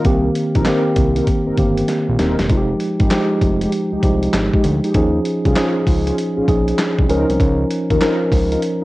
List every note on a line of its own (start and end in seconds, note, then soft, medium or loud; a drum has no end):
0.05 0.30 C2 loud
0.05 0.52 D#3 medium
0.05 0.52 A#3 medium
0.05 0.53 C4 medium
0.05 0.53 G4 medium
0.05 kick loud
0.05 closed hi-hat medium
0.35 closed hi-hat medium
0.55 0.64 A#1 medium
0.55 0.64 C4 medium
0.55 0.64 D#4 medium
0.55 0.65 A#4 medium
0.55 kick medium
0.55 closed hi-hat soft
0.65 1.33 D#3 medium
0.65 1.33 A#3 medium
0.65 0.83 C4 medium
0.65 1.33 C4 medium
0.65 0.83 D#4 medium
0.65 1.33 G4 loud
0.65 0.83 A#4 medium
0.65 snare loud
0.65 clap medium
0.65 closed hi-hat medium
0.96 1.21 C2 loud
0.96 kick medium
0.96 closed hi-hat medium
1.16 1.26 C4 medium
1.16 1.26 D#4 medium
1.16 1.26 A#4 medium
1.16 closed hi-hat medium
1.27 kick medium
1.27 closed hi-hat medium
1.46 1.52 G1 soft
1.46 1.56 C4 medium
1.46 1.56 D#4 medium
1.46 1.56 A#4 medium
1.58 1.83 G1 medium
1.58 2.25 D#3 medium
1.58 2.25 A#3 medium
1.58 2.25 C4 medium
1.58 2.25 G4 medium
1.58 kick medium
1.58 closed hi-hat medium
1.78 closed hi-hat soft
1.88 snare medium
1.88 closed hi-hat medium
2.09 2.17 A#1 medium
2.18 2.36 D#1 medium
2.18 2.36 C4 medium
2.18 2.36 D#4 medium
2.18 2.36 A#4 medium
2.18 snare medium
2.18 closed hi-hat medium
2.39 2.48 E1 medium
2.39 snare medium
2.39 closed hi-hat soft
2.50 2.75 F1 loud
2.50 2.97 F3 medium
2.50 2.97 G#3 medium
2.50 2.98 D#4 medium
2.50 2.59 F4 medium
2.50 kick loud
2.50 closed hi-hat medium
2.57 3.01 G4 medium
2.80 closed hi-hat medium
2.99 3.09 G#1 medium
2.99 3.09 G#3 medium
2.99 3.09 D#4 medium
2.99 3.09 G4 medium
2.99 kick medium
2.99 closed hi-hat soft
3.10 3.77 F3 medium
3.10 3.28 G#3 medium
3.10 3.78 G#3 medium
3.10 3.28 D#4 medium
3.10 3.78 D#4 medium
3.10 3.28 G4 medium
3.10 3.78 G4 loud
3.10 snare loud
3.10 clap medium
3.10 closed hi-hat medium
3.41 3.67 F1 loud
3.41 kick medium
3.41 closed hi-hat medium
3.61 3.71 G#3 medium
3.61 3.71 D#4 medium
3.61 3.71 G4 medium
3.61 closed hi-hat medium
3.72 closed hi-hat medium
3.92 3.97 C2 soft
3.92 4.01 G#3 medium
3.92 4.01 D#4 medium
3.92 4.02 G4 medium
4.03 4.28 C2 medium
4.03 4.69 F3 medium
4.03 4.70 G#3 medium
4.03 4.70 D#4 medium
4.03 4.70 G4 medium
4.03 kick medium
4.03 closed hi-hat medium
4.23 closed hi-hat soft
4.33 4.50 G#1 loud
4.33 snare loud
4.33 clap medium
4.33 closed hi-hat medium
4.53 4.63 G#3 medium
4.53 4.63 D#4 medium
4.53 4.63 G4 medium
4.53 kick loud
4.64 4.80 D2 medium
4.64 closed hi-hat medium
4.84 4.93 G#3 medium
4.84 4.93 D#4 medium
4.84 4.93 G4 medium
4.84 closed hi-hat soft
4.94 5.20 D#2 loud
4.94 5.42 F3 medium
4.94 5.42 C#4 medium
4.94 5.42 D#4 medium
4.94 5.43 G#4 medium
4.94 kick loud
4.94 closed hi-hat medium
5.25 closed hi-hat medium
5.45 5.54 C2 medium
5.45 5.54 C#4 medium
5.45 5.54 F4 medium
5.45 5.55 G#4 medium
5.45 kick medium
5.45 closed hi-hat soft
5.55 6.22 F3 medium
5.55 5.72 C#4 medium
5.55 6.22 C#4 medium
5.55 6.23 D#4 medium
5.55 5.73 F4 medium
5.55 5.73 G#4 medium
5.55 6.23 G#4 loud
5.55 snare loud
5.55 clap medium
5.55 closed hi-hat medium
5.87 6.12 C#2 loud
5.87 kick loud
5.87 open hi-hat medium
6.06 6.15 C#4 medium
6.06 6.16 F4 medium
6.06 6.16 G#4 medium
6.06 closed hi-hat medium
6.18 closed hi-hat medium
6.37 6.42 A#1 soft
6.37 6.46 C#4 medium
6.37 6.46 F4 medium
6.37 6.46 G#4 medium
6.48 6.73 A#1 medium
6.48 7.08 F3 medium
6.48 7.08 C#4 medium
6.48 7.09 D#4 medium
6.48 7.10 G#4 medium
6.48 kick medium
6.48 closed hi-hat medium
6.68 closed hi-hat soft
6.78 snare loud
6.78 clap medium
6.78 closed hi-hat medium
6.99 7.07 C2 medium
6.99 kick medium
7.08 7.25 C#2 loud
7.08 7.86 F3 medium
7.08 7.86 C#4 medium
7.08 7.26 D#4 medium
7.08 7.87 D#4 medium
7.08 7.26 F4 medium
7.08 7.26 A#4 medium
7.08 7.87 A#4 loud
7.08 closed hi-hat medium
7.29 7.38 C2 medium
7.29 closed hi-hat soft
7.40 7.65 C#2 loud
7.40 kick loud
7.40 closed hi-hat medium
7.71 closed hi-hat medium
7.90 7.99 D#2 medium
7.90 7.99 D#4 medium
7.90 7.99 F4 medium
7.90 7.99 A#4 loud
7.90 kick medium
7.90 closed hi-hat medium
8.00 8.67 F3 medium
8.00 8.68 C#4 medium
8.00 8.17 D#4 medium
8.00 8.68 D#4 medium
8.00 8.18 F4 medium
8.00 8.18 A#4 medium
8.00 8.68 A#4 loud
8.00 snare loud
8.00 clap medium
8.00 closed hi-hat medium
8.32 8.57 C#2 loud
8.32 kick medium
8.32 open hi-hat medium
8.51 8.61 D#4 medium
8.51 8.61 F4 medium
8.51 8.61 A#4 medium
8.51 closed hi-hat medium
8.62 closed hi-hat medium